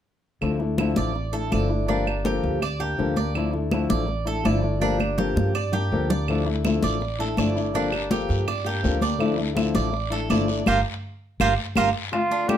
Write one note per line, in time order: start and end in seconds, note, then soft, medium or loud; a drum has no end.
0.41 0.93 D2 medium
0.41 0.59 D3 medium
0.41 0.59 F3 medium
0.41 0.59 A3 medium
0.41 0.59 D4 medium
0.41 0.58 E4 medium
0.41 high conga soft
0.41 claves medium
0.59 0.78 A3 soft
0.59 0.78 D4 soft
0.59 0.77 E4 soft
0.59 high conga soft
0.78 1.13 D3 medium
0.78 1.14 F3 medium
0.78 1.14 A3 medium
0.78 1.14 D4 medium
0.78 1.15 E4 medium
0.78 high conga medium
0.78 claves medium
0.96 1.48 A1 medium
0.96 1.33 D5 medium
0.96 high conga medium
1.14 muted nylon-string guitar stroke medium
1.14 high conga soft
1.33 1.51 A3 soft
1.33 1.51 D4 soft
1.33 1.51 E4 soft
1.33 1.51 A4 medium
1.33 high conga soft
1.51 2.38 G1 medium
1.51 1.69 D3 medium
1.51 1.69 F3 medium
1.51 1.69 A3 medium
1.51 1.69 D4 medium
1.51 1.68 E4 medium
1.51 1.88 D5 medium
1.51 high conga medium
1.51 claves medium
1.69 1.88 A3 soft
1.69 1.88 D4 soft
1.69 1.87 E4 soft
1.87 2.06 D3 medium
1.87 2.06 F3 medium
1.87 2.06 A#3 medium
1.87 2.24 D4 medium
1.87 2.06 D4 medium
1.87 2.05 G4 medium
1.87 high conga soft
2.06 2.24 A#3 soft
2.06 2.25 D4 soft
2.06 2.24 G4 medium
2.06 high conga soft
2.06 claves medium
2.24 2.60 D3 medium
2.24 2.61 F3 medium
2.24 2.61 A#3 medium
2.24 2.61 D4 medium
2.24 2.61 G4 medium
2.24 high conga medium
2.43 2.95 D2 medium
2.43 high conga soft
2.61 2.80 D5 medium
2.61 muted nylon-string guitar stroke medium
2.61 high conga soft
2.61 claves medium
2.80 2.98 A#3 soft
2.80 2.98 D4 soft
2.80 2.98 G4 medium
2.80 3.16 G4 medium
2.80 high conga soft
2.98 3.85 D2 medium
2.98 3.16 D3 medium
2.98 3.16 F3 medium
2.98 3.16 A#3 medium
2.98 3.16 D4 medium
2.98 3.15 G4 medium
2.98 high conga soft
3.16 3.35 A#3 soft
3.16 3.35 D4 soft
3.16 3.34 G4 soft
3.16 3.52 D5 medium
3.16 high conga medium
3.35 3.53 D3 medium
3.35 3.53 F3 medium
3.35 3.53 A3 medium
3.35 3.53 D4 medium
3.35 3.52 E4 medium
3.35 high conga soft
3.35 claves medium
3.53 3.72 A3 soft
3.53 3.71 D4 soft
3.53 3.71 E4 soft
3.53 high conga soft
3.71 4.07 D3 medium
3.71 4.07 F3 medium
3.71 4.07 A3 medium
3.71 4.08 D4 medium
3.71 4.07 E4 medium
3.71 high conga medium
3.71 claves medium
3.90 4.41 A1 medium
3.90 4.26 D5 medium
3.90 high conga medium
4.08 muted nylon-string guitar stroke medium
4.08 high conga soft
4.25 4.43 A3 soft
4.25 4.44 D4 soft
4.25 4.44 E4 soft
4.25 4.45 A4 medium
4.25 high conga soft
4.43 5.31 G1 medium
4.43 4.62 D3 medium
4.43 4.62 F3 medium
4.43 4.62 A3 medium
4.43 4.63 D4 medium
4.43 4.61 E4 medium
4.43 4.81 D5 medium
4.43 high conga medium
4.43 claves medium
4.62 4.81 A3 soft
4.62 4.81 D4 soft
4.62 4.80 E4 medium
4.80 4.99 D3 medium
4.80 4.99 F3 medium
4.80 4.99 A#3 medium
4.80 5.17 D4 medium
4.80 4.98 D4 medium
4.80 4.97 G4 medium
4.80 high conga medium
4.98 5.17 A#3 soft
4.98 5.17 D4 soft
4.98 5.17 G4 soft
4.98 high conga medium
4.98 claves medium
5.17 5.54 D3 medium
5.17 5.54 F3 medium
5.17 5.54 A#3 medium
5.17 5.55 D4 medium
5.17 5.54 G4 medium
5.17 5.55 G4 medium
5.17 low conga medium
5.36 5.88 G2 medium
5.36 high conga medium
5.55 5.73 D5 medium
5.55 muted nylon-string guitar stroke medium
5.55 claves medium
5.72 5.91 A#3 soft
5.72 5.91 D4 soft
5.72 5.90 G4 soft
5.72 6.09 G4 medium
5.72 low conga medium
5.92 6.78 D2 medium
5.92 6.09 D3 medium
5.92 6.10 F3 medium
5.92 6.10 A#3 medium
5.92 6.10 D4 medium
5.92 6.09 G4 medium
6.10 6.28 A#3 soft
6.10 6.28 D4 soft
6.10 6.27 G4 soft
6.10 6.46 D5 medium
6.10 low conga medium
6.28 6.46 D3 medium
6.28 6.46 F3 medium
6.28 6.46 A3 medium
6.28 6.46 D4 medium
6.28 6.44 E4 medium
6.28 high conga soft
6.28 long guiro medium
6.28 claves medium
6.46 6.64 A3 soft
6.46 6.64 D4 soft
6.46 6.64 E4 soft
6.46 high conga soft
6.64 6.99 D3 medium
6.64 6.99 F3 medium
6.64 7.00 A3 medium
6.64 7.00 D4 medium
6.64 7.01 E4 medium
6.64 high conga medium
6.64 short guiro medium
6.64 claves medium
6.83 7.34 A1 medium
6.83 7.19 D5 medium
6.83 high conga medium
6.83 short guiro medium
7.00 muted nylon-string guitar stroke medium
7.00 high conga soft
7.00 long guiro medium
7.19 7.37 A3 soft
7.19 7.37 D4 soft
7.19 7.37 E4 soft
7.19 7.38 A4 medium
7.19 high conga soft
7.37 8.23 G1 medium
7.37 7.55 D3 medium
7.37 7.55 F3 medium
7.37 7.56 A3 medium
7.37 7.55 D4 medium
7.37 7.54 E4 medium
7.37 7.74 D5 medium
7.37 high conga medium
7.37 short guiro medium
7.37 claves medium
7.55 7.74 A3 soft
7.55 7.74 D4 soft
7.55 7.73 E4 soft
7.55 short guiro medium
7.74 7.92 D3 medium
7.74 7.92 F3 medium
7.74 7.92 A#3 medium
7.74 8.10 D4 medium
7.74 7.92 D4 medium
7.74 7.91 G4 medium
7.74 high conga soft
7.74 long guiro medium
7.92 8.10 A#3 soft
7.92 8.10 D4 soft
7.92 8.10 G4 soft
7.92 high conga soft
7.92 claves medium
8.10 8.46 D3 medium
8.10 8.46 F3 medium
8.10 8.47 A#3 medium
8.10 8.47 D4 medium
8.10 8.47 G4 medium
8.10 8.48 G4 medium
8.10 high conga medium
8.10 short guiro medium
8.29 8.81 G2 medium
8.29 high conga soft
8.29 short guiro medium
8.48 8.66 D5 medium
8.48 muted nylon-string guitar stroke medium
8.48 high conga soft
8.48 long guiro medium
8.48 claves medium
8.65 8.82 A#3 soft
8.65 8.83 D4 soft
8.65 8.83 G4 soft
8.65 9.02 G4 medium
8.65 high conga soft
8.82 9.70 D2 medium
8.82 9.01 D3 medium
8.82 9.01 F3 medium
8.82 9.01 A#3 medium
8.82 9.00 D4 medium
8.82 8.99 G4 medium
8.82 high conga soft
8.82 short guiro medium
9.00 9.19 A#3 soft
9.00 9.19 D4 soft
9.00 9.19 G4 medium
9.00 9.38 D5 medium
9.00 high conga medium
9.00 short guiro medium
9.18 9.37 D3 medium
9.18 9.38 F3 medium
9.18 9.38 A3 medium
9.18 9.37 D4 medium
9.18 9.36 E4 medium
9.18 high conga soft
9.18 long guiro medium
9.18 claves medium
9.37 9.54 A3 soft
9.37 9.55 D4 soft
9.37 9.55 E4 soft
9.37 high conga soft
9.54 9.91 D3 medium
9.54 9.91 F3 medium
9.54 9.92 A3 medium
9.54 9.91 D4 medium
9.54 9.92 E4 medium
9.54 high conga medium
9.54 short guiro medium
9.54 claves medium
9.75 10.27 A1 medium
9.75 10.11 D5 medium
9.75 high conga medium
9.75 short guiro medium
9.92 muted nylon-string guitar stroke medium
9.92 high conga soft
9.92 long guiro medium
10.10 10.29 A3 soft
10.10 10.30 D4 soft
10.10 10.29 E4 soft
10.10 10.30 A4 medium
10.10 high conga soft
10.29 10.64 G1 medium
10.29 10.47 D3 medium
10.29 10.48 F3 medium
10.29 10.48 A3 medium
10.29 10.48 D4 medium
10.29 10.47 E4 medium
10.29 10.66 D5 medium
10.29 high conga medium
10.29 short guiro medium
10.29 claves medium
10.48 10.66 A3 soft
10.48 10.65 D4 soft
10.48 10.66 E4 soft
10.48 short guiro medium
10.66 10.81 G1 medium
10.66 10.78 G3 medium
10.66 10.78 A#3 medium
10.66 10.78 D4 medium
10.66 10.79 F4 medium
10.66 10.79 G4 medium
10.66 10.79 A#4 medium
10.66 high conga medium
10.66 long guiro medium
10.66 claves medium
11.40 11.54 G1 medium
11.40 11.52 G3 medium
11.40 11.52 A#3 medium
11.40 11.52 D4 medium
11.40 11.52 F4 medium
11.40 11.52 G4 medium
11.40 11.52 A#4 medium
11.40 high conga medium
11.40 long guiro medium
11.40 claves loud
11.75 11.90 G1 medium
11.75 11.88 G3 medium
11.75 11.88 A#3 medium
11.75 11.88 D4 medium
11.75 11.89 F4 medium
11.75 11.89 G4 medium
11.75 11.89 A#4 medium
11.75 high conga medium
11.75 long guiro medium
11.75 claves loud
12.12 12.47 D3 medium
12.12 12.48 A3 medium
12.12 12.49 D4 medium
12.12 12.50 F4 medium
12.12 12.49 F4 medium
12.12 high bongo medium
12.12 high conga soft
12.12 claves medium
12.31 12.57 D4 medium
12.31 high bongo soft
12.31 high conga soft
12.48 12.57 D3 medium
12.48 12.57 A3 medium
12.48 12.57 D4 medium
12.48 12.57 F4 medium
12.48 12.57 G4 medium
12.48 high bongo medium
12.48 high conga medium
12.48 claves medium